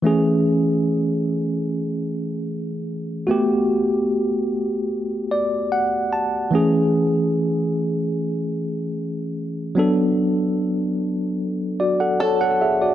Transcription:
<<
  \new Staff \with { instrumentName = "Five-string banjo" } { \time 4/4 \key a \major \tempo 4 = 74 r1 | r1 | r1 | r2. a'4 | }
  \new Staff \with { instrumentName = "Tine electric piano" } { \time 4/4 \key a \major << { r1 | r2 r8 d''8 fis''8 a''8 | r1 | r2 r8 <fis' d''>16 <a' fis''>16 <cis'' a''>16 <a' fis''>16 <gis' e''>16 <fis' d''>16 | } \\ { <e a cis' gis'>1 | <a b fis' g'>1 | <e a cis' gis'>1 | <fis b d' a'>1 | } >> }
>>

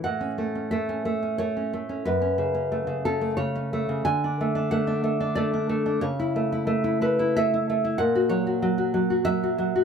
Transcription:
\new Staff \with { instrumentName = "Nylon-string guitar" } { \time 3/4 \key a \major \tempo 4 = 92 << { fis''4 e''4 cis''4 | b'4. a'8 cis''4 | gis''4 fis''4 d''4 | cis''4. b'8 e''4 |
\key fis \phrygian fis''8 cis''4. e''4 | } \\ { a,16 cis'16 a16 cis'16 a16 cis'16 a16 cis'16 a16 cis'16 a16 cis'16 | fis,16 cis'16 cis16 cis'16 a16 cis16 cis'16 a16 cis16 cis'16 a16 cis16 | d16 d'16 a16 d'16 a16 d'16 a16 d'16 a16 d'16 a16 d'16 | cis16 e'16 a16 e'16 a16 e'16 a16 e'16 a16 e'16 a16 e'16 |
ais,16 fis'16 fis16 fis'16 fis16 fis'16 fis16 fis'16 fis16 fis'16 fis16 fis'16 | } >> }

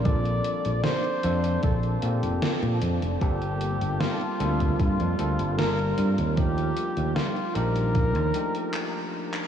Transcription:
<<
  \new Staff \with { instrumentName = "Flugelhorn" } { \time 4/4 \key bes \major \tempo 4 = 76 d''4 c''4 a'8 g'4 r8 | g'4 f'4 f'4 bes'8. r16 | g'4 f'8 bes'2 r8 | }
  \new Staff \with { instrumentName = "Ambient pad" } { \time 4/4 \key bes \major << { <c bes a''>1~ | <c bes a''>1 | g2. r4 | } \\ { d''1 | f'1 | f'2. r4 | } >> }
  \new Staff \with { instrumentName = "Tine electric piano" } { \time 4/4 \key bes \major <f bes c' d' a'>4. <f bes c' d' a'>4 <f bes c' d' a'>8 r4 | <g bes c' f' a'>4. <g bes c' f' a'>4 <g bes c' f' a'>8 r4 | <f a d' ees' g'>4. <f bes d' ees' g'>4 <f a d' ees' g'>8 r4 | }
  \new Staff \with { instrumentName = "Fingered electric bass" } { \clef bass \time 4/4 \key bes \major bes,,8 r16 bes,,16 r8 f,8 bes,,8 bes,16 f,,16 r16 bes,16 f,16 f,,16 | g,,8. g,,16 r8 d,8 g,16 f,16 d,16 g,,8. g,16 ees,16~ | ees,8 r16 ees,16 r8 bes,,8. ees,16 r4. | }
  \new DrumStaff \with { instrumentName = "Drums" } \drummode { \time 4/4 <hh bd>16 hh16 hh16 hh16 <hh sn>16 hh16 hh16 hh16 <hh bd>16 hh16 hh16 hh16 <hh sn>16 hh16 hh16 hh16 | <hh bd>16 hh16 hh16 hh16 <hh sn>16 hh16 hh16 <hh bd>16 <hh bd>16 hh16 hh16 hh16 <hh sn>16 hh16 hh16 hh16 | <hh bd>16 hh16 hh16 hh16 <hh sn>16 hh16 hh16 hh16 <hh bd>16 hh16 hh16 hh16 hc8. hc16 | }
>>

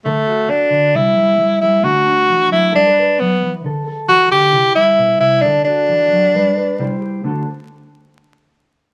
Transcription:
<<
  \new Staff \with { instrumentName = "Tenor saxophone" } { \time 4/4 \key d \mixolydian \tempo 4 = 134 a4 d'4 e'4. e'8 | fis'4. e'8 d'4 b8. r16 | r4 fis'8 g'4 e'4 e'8 | d'8 d'2. r8 |
r1 | }
  \new Staff \with { instrumentName = "Clean electric guitar" } { \clef bass \time 4/4 \key d \mixolydian << { a'8 fis'4. g8 g8 r8 g8 | <a d'>8 d'4. a'16 b'16 b'4. | a'8 a'4. e'8 g4. | a'8 fis'4. b'8 b'8 <g e' g' c''>8 g'8 |
<a d' fis' a'>8 r2. r8 | } \\ { d4 r8 d8 c4 g8 r8 | d4 e8 fis8 g4 fis8 e8 | d4 e8 d8 c4 b,8 c8 | d4 e8 fis8 g4 c4 |
d8 r2. r8 | } >> }
>>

